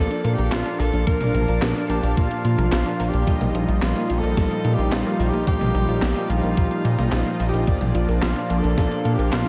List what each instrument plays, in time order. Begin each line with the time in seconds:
Already playing: analog polysynth A#2 A#3 F4 D5, analog synth pad F3 A#3 D4, tenor saxophone A4
0.11 synth arpeggio sound D4, closed hi-hat
0.24 analog polysynth A#2 A#3 F4 F5, analog synth bass A#2, synth arpeggio sound F4, closed hi-hat
0.34 tenor saxophone G4
0.38 analog synth bass A#1, synth arpeggio sound A#4, closed hi-hat
0.52 analog synth bass A#1, synth arpeggio sound F4, tenor saxophone F4, snare, clap, closed hi-hat
0.66 synth arpeggio sound D4, closed hi-hat
0.80 analog synth bass A#1, tenor saxophone A4, synth arpeggio sound A#4, open hi-hat
0.93 analog synth bass A#1, synth arpeggio sound D4, closed hi-hat
1.07 analog synth bass A#1, analog polysynth A#2 A#3 F4 F5, synth arpeggio sound A#3, tenor saxophone A#4, analog synth pad A5, kick, closed hi-hat
1.21 analog synth bass A#1, synth arpeggio sound D4, closed hi-hat, mid tom
1.34 analog synth bass A#1, synth arpeggio sound F4, closed hi-hat, mid tom
1.48 analog synth bass A#1, synth arpeggio sound A#4, closed hi-hat
1.62 analog synth bass A#1, synth arpeggio sound F4, snare, clap, closed hi-hat
1.76 synth arpeggio sound D4, closed hi-hat
1.89 analog synth bass A#1, tenor saxophone G4, synth arpeggio sound A#4, closed hi-hat
2.03 analog synth bass A#1, synth arpeggio sound D4, closed hi-hat
2.17 analog synth bass A#1, analog polysynth A#2 A#3 F4 F5, synth arpeggio sound A#3, tenor saxophone F4, kick, closed hi-hat
2.31 synth arpeggio sound D4, closed hi-hat
2.45 analog synth bass A#2, synth arpeggio sound F4, closed hi-hat
2.58 analog synth bass A#1, synth arpeggio sound A#4, closed hi-hat, mid tom
2.72 analog synth bass A#1, synth arpeggio sound F4, tenor saxophone F4, snare, clap, closed hi-hat
2.86 synth arpeggio sound D4, closed hi-hat
3.00 analog synth bass A#1, synth arpeggio sound A#4, open hi-hat
3.09 tenor saxophone G4
3.13 analog synth bass A#1, synth arpeggio sound D4, closed hi-hat
3.27 analog synth bass A#1, analog polysynth A#2 G3 F4 D#5, synth arpeggio sound G3, analog synth pad G3 D#4, kick, closed hi-hat
3.41 analog synth bass A#1, synth arpeggio sound A#3, closed hi-hat, mid tom
3.55 analog synth bass A#1, synth arpeggio sound D#4, closed hi-hat
3.68 analog synth bass A#1, synth arpeggio sound F4, closed hi-hat
3.82 analog synth bass A#1, synth arpeggio sound D#4, tenor saxophone F4, snare, clap, closed hi-hat
3.96 synth arpeggio sound A#3, closed hi-hat
4.10 analog synth bass A#1, synth arpeggio sound F4, closed hi-hat
4.19 tenor saxophone A4
4.23 analog synth bass A#1, synth arpeggio sound A#3, closed hi-hat
4.37 analog synth bass A#1, synth arpeggio sound G3, kick, snare, closed hi-hat
4.51 synth arpeggio sound A#3, closed hi-hat
4.65 analog synth bass A#2, analog polysynth A#2 G3 F4 F5, synth arpeggio sound D#4, closed hi-hat
4.74 tenor saxophone G4
4.78 analog synth bass A#1, synth arpeggio sound F4, closed hi-hat
4.92 analog synth bass A#1, synth arpeggio sound D#4, tenor saxophone F4, snare, clap, closed hi-hat
5.06 synth arpeggio sound A#3, closed hi-hat
5.19 analog synth bass A#1, synth arpeggio sound F4, open hi-hat
5.29 tenor saxophone G4
5.33 analog synth bass A#1, synth arpeggio sound A#3, closed hi-hat
5.47 analog synth bass A#1, analog polysynth A#2 G3 F4 F5, synth arpeggio sound G3, tenor saxophone G4, kick, closed hi-hat
5.61 analog synth bass A#1, synth arpeggio sound A#3, closed hi-hat, mid tom
5.75 analog synth bass A#1, synth arpeggio sound D#4, closed hi-hat, mid tom
5.88 analog synth bass A#1, synth arpeggio sound F4, closed hi-hat
6.02 analog synth bass A#1, synth arpeggio sound D#4, snare, clap, closed hi-hat
6.16 synth arpeggio sound A#3, closed hi-hat
6.29 analog synth bass A#1, synth arpeggio sound F4, tenor saxophone F4, closed hi-hat
6.43 analog synth bass A#1, synth arpeggio sound A#3, closed hi-hat
6.57 analog synth bass A#1, analog polysynth A#2 G3 F4 F5, synth arpeggio sound G3, kick, closed hi-hat
6.71 synth arpeggio sound A#3, closed hi-hat
6.85 analog polysynth A#2 G3 F4 D#5, analog synth bass A#2, synth arpeggio sound D#4, closed hi-hat
6.98 analog synth bass A#1, analog polysynth A#2 G3 F4 D#5, synth arpeggio sound F4, closed hi-hat, mid tom
7.12 analog synth bass A#1, synth arpeggio sound D#4, tenor saxophone F4, snare, clap, closed hi-hat
7.26 synth arpeggio sound A#3, closed hi-hat
7.40 analog synth bass A#1, synth arpeggio sound F4, open hi-hat
7.49 tenor saxophone G4
7.53 analog synth bass A#1, synth arpeggio sound A#3, closed hi-hat
7.67 analog synth bass A#1, analog polysynth A#2 A#3 F4 D5, synth arpeggio sound A#3, analog synth pad A#3 D4, kick, closed hi-hat
7.81 analog synth bass A#1, synth arpeggio sound D4, closed hi-hat, mid tom
7.95 analog synth bass A#1, synth arpeggio sound F4, closed hi-hat
8.09 analog synth bass A#1, synth arpeggio sound A#4, closed hi-hat
8.22 analog synth bass A#1, synth arpeggio sound F4, tenor saxophone F4, snare, clap, closed hi-hat
8.36 synth arpeggio sound D4, closed hi-hat
8.50 analog synth bass A#1, synth arpeggio sound A#4, closed hi-hat
8.59 tenor saxophone A4
8.64 analog synth bass A#1, synth arpeggio sound D4, closed hi-hat
8.77 analog synth bass A#1, synth arpeggio sound A#3, kick, snare, closed hi-hat
8.91 synth arpeggio sound D4, closed hi-hat
9.05 analog polysynth A#2 A#3 F4 F5, analog synth bass A#2, synth arpeggio sound F4, closed hi-hat
9.14 tenor saxophone G4
9.19 analog synth bass A#1, synth arpeggio sound A#4, closed hi-hat
9.32 analog synth bass A#1, tenor saxophone F4, synth arpeggio sound F4, snare, clap, closed hi-hat